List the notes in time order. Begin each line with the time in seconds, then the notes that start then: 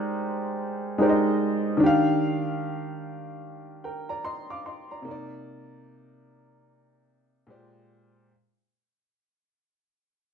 Already playing: G#3 D#4 G4 A#4 C5 D5
0.98 G#3 D#4 G4 A#4 C5
1.03 D5
1.09 D#5
1.77 D#3 D4
1.83 G4 F5
3.84 A#4 G5
4.09 D5 A#5
4.25 D#5 C6
4.50 F5 D6
4.66 D#5 C6
4.91 D5 A#5
5.02 C3 A#3
5.08 D#4 D5
7.47 A#2 G#3 G4 C5
7.52 D5